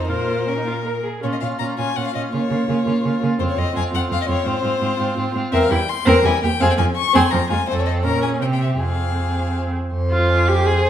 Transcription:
Already playing: viola D#4
0.08 cello A#2, viola F4, violin A#4 C5
0.47 viola C#4, violin A#4
0.58 viola D#4
0.66 viola F4
0.85 viola A#4
1.04 viola G#4
1.23 cello A#2, viola C#4, violin F4 C#5
1.33 violin D#5
1.41 cello A#2, viola C#4, violin F4 F5
1.59 cello A#2, viola C#4, violin F4 A#5
1.78 cello A#2, viola C#4, violin F4 G#5
1.96 cello A#2, viola C#4, violin F4 F#5
2.07 violin F5
2.14 cello A#2, viola C#4, violin F4 D#5
2.31 cello C#3, viola A#3, violin F4 C#5
2.50 cello C#3, viola A#3, violin F4
2.68 cello C#3, viola A#3, violin F4
2.85 cello C#3, viola A#3, violin F4
3.03 cello C#3, viola A#3, violin F4
3.21 cello C#3, viola A#3, violin F4
3.40 cello F2, viola C4, violin F4 C5
3.50 violin C#5
3.57 cello F2, viola C4, violin F4 D#5
3.75 cello F2, viola C4, violin F4 G#5
3.93 cello F2, viola C4, violin F4 F#5
4.10 cello F2, viola C4, violin F4 F5
4.22 violin D#5
4.28 cello F2, viola C4, violin F4 C#5
4.45 cello G#2, viola C4, violin F4 C5
4.63 cello G#2, viola C4, violin F4
4.81 cello G#2, viola C4, violin F4
4.99 cello G#2, viola C4, violin F4
5.17 cello G#2, viola C4, violin F4
5.34 cello G#2, viola C4, violin F4
5.52 cello E2, viola C4, violin A#4 E5
5.63 violin F5
5.70 cello E2, viola G3, violin E4 G5
5.89 violin C6
6.05 cello E2, viola C4, violin A#4 A#5
6.23 cello E2, viola G3, violin E4 G#5
6.41 cello E2, viola A#3, violin G4 G5
6.60 cello F2, viola C4, violin G#4 F5
6.71 violin G5
6.78 cello F2, viola F3, violin C4 G#5
6.96 violin C#6
7.13 cello F2, viola C4, violin G#4 C6
7.31 cello F2, viola F3, violin C4 A#5
7.50 cello F2, viola G#3, violin F4 G#5
7.67 cello F2, viola C4, violin A4 C5
7.79 violin C#5
7.86 violin D#5
8.04 cello A#2, viola C#4, violin A#4 A#5
8.22 violin G#4 G#5
8.40 cello C3, viola C4, violin G4 G5
8.53 violin G5
8.62 violin E5
8.79 cello F2, viola C4, violin G#4 F5
9.93 cello F2, violin C5
10.12 viola F4
10.29 violin G#5
10.48 viola G4
10.66 viola G#4, violin C5

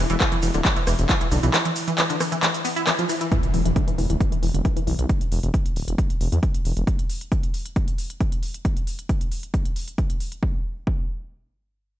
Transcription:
Already playing: synth drone E3 E4
0.10 detuned saw bass E1, synth arpeggio sound E3, closed hi-hat, ride, shaker
0.20 kick, cross-stick, clap, closed hi-hat, ride, shaker
0.32 synth arpeggio sound E3, closed hi-hat, ride
0.43 detuned saw bass E1, synth arpeggio sound E3, open hi-hat, ride, shaker
0.54 detuned saw bass D1, synth arpeggio sound D3, closed hi-hat, ride, shaker
0.65 synth arpeggio sound E3, kick, clap, closed hi-hat, ride, shaker
0.76 synth arpeggio sound E3, closed hi-hat, ride
0.87 detuned saw bass E1, synth arpeggio sound E3, cross-stick, open hi-hat, ride, shaker
0.99 detuned saw bass E1, closed hi-hat, ride, shaker
1.09 synth arpeggio sound E3, kick, clap, closed hi-hat, ride, shaker
1.21 synth arpeggio sound E3, closed hi-hat, ride
1.31 detuned saw bass B1, synth arpeggio sound D3, open hi-hat, ride, shaker
1.43 detuned saw bass B1, synth arpeggio sound E3, closed hi-hat, ride, shaker
1.54 synth arpeggio sound E3, cross-stick, clap, closed hi-hat, ride, shaker
1.65 synth arpeggio sound E3, closed hi-hat, ride
1.76 open hi-hat, ride, shaker
1.88 synth arpeggio sound E3, closed hi-hat, ride, shaker
1.98 synth arpeggio sound E3, clap, closed hi-hat, ride, shaker
2.10 synth arpeggio sound D3, closed hi-hat, ride, shaker
2.20 synth arpeggio sound E3, cross-stick, open hi-hat, ride, shaker
2.32 synth arpeggio sound E3, closed hi-hat, ride, shaker
2.43 synth arpeggio sound E3, clap, closed hi-hat, ride, shaker
2.54 closed hi-hat, ride, shaker
2.65 synth arpeggio sound B3, open hi-hat, ride, shaker
2.76 synth arpeggio sound E4, closed hi-hat, ride, shaker
2.87 synth arpeggio sound E3, cross-stick, clap, closed hi-hat, ride, shaker
2.99 synth arpeggio sound F3, closed hi-hat, ride
3.09 synth arpeggio sound E3, open hi-hat, ride, shaker
3.21 synth arpeggio sound E3, closed hi-hat, ride, shaker
3.32 synth arpeggio sound E3, kick, closed hi-hat, impact
3.43 closed hi-hat
3.54 detuned saw bass E1, synth arpeggio sound E3, open hi-hat
3.65 detuned saw bass E1, synth arpeggio sound E3, closed hi-hat
3.76 synth arpeggio sound D3, kick, closed hi-hat
3.88 synth arpeggio sound E3, closed hi-hat
3.98 detuned saw bass E1, synth arpeggio sound E3, open hi-hat
4.10 detuned saw bass D1, synth arpeggio sound E3, closed hi-hat
4.20 kick, closed hi-hat
4.32 synth arpeggio sound E3, closed hi-hat
4.43 detuned saw bass E1, synth arpeggio sound E3, open hi-hat
4.54 detuned saw bass E1, synth arpeggio sound D3, closed hi-hat
4.65 synth arpeggio sound E3, kick, closed hi-hat
4.76 synth arpeggio sound E3, closed hi-hat
4.87 detuned saw bass B1, synth arpeggio sound E3, open hi-hat
4.99 detuned saw bass B1, closed hi-hat
5.09 kick, closed hi-hat
5.21 closed hi-hat
5.32 detuned saw bass E1, open hi-hat
5.43 detuned saw bass E1, closed hi-hat
5.54 kick, closed hi-hat
5.66 closed hi-hat
5.76 detuned saw bass D1, open hi-hat
5.88 detuned saw bass E1, closed hi-hat
5.98 kick, closed hi-hat
6.10 closed hi-hat
6.21 detuned saw bass E1, open hi-hat
6.32 detuned saw bass E2, closed hi-hat
6.43 kick, closed hi-hat
6.54 closed hi-hat
6.65 detuned saw bass E1, open hi-hat
6.77 detuned saw bass E1, closed hi-hat
6.87 kick, closed hi-hat
6.99 closed hi-hat
7.10 open hi-hat
7.21 closed hi-hat
7.32 kick, closed hi-hat
7.43 closed hi-hat
7.54 open hi-hat
7.66 closed hi-hat
7.76 kick, closed hi-hat
7.88 closed hi-hat
7.98 open hi-hat
8.10 closed hi-hat
8.21 kick, closed hi-hat
8.32 closed hi-hat
8.43 open hi-hat
8.54 closed hi-hat
8.65 kick, closed hi-hat
8.77 closed hi-hat
8.87 open hi-hat
8.99 closed hi-hat
9.09 kick, closed hi-hat
9.21 closed hi-hat
9.32 open hi-hat
9.43 closed hi-hat
9.54 kick, closed hi-hat
9.65 closed hi-hat
9.76 open hi-hat
9.88 closed hi-hat
9.98 kick, closed hi-hat
10.10 closed hi-hat
10.20 open hi-hat
10.32 closed hi-hat
10.43 kick
10.87 kick

